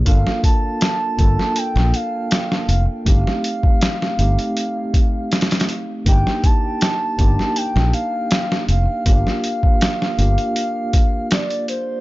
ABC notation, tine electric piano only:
X:1
M:4/4
L:1/8
Q:1/4=80
K:Gm
V:1 name="Tine electric piano"
[B,DFA]3 [B,DFA]4- [B,DFA] | [A,CEG]3 [A,CEG]4- [A,CEG] | [B,DEG]3 [B,DEG]4- [B,DEG] | [B,DFG]3 [B,DFG]4- [B,DFG] |]